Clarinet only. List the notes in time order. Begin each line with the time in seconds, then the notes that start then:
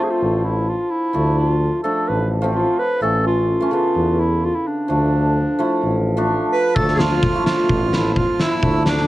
0.03 G#4
0.11 F4
0.44 E4
0.69 F4
0.91 E4
1.38 E4
1.49 F4
1.83 A4
2.08 B4
2.55 F4
2.79 B4
3.02 A4
3.27 F4
3.72 F4
4.19 E4
4.44 F4
4.55 E4
4.67 D4
6.52 B4
6.75 A4
6.99 F4
7.47 F4
7.93 E4
8.17 F4
8.41 E4
8.89 D4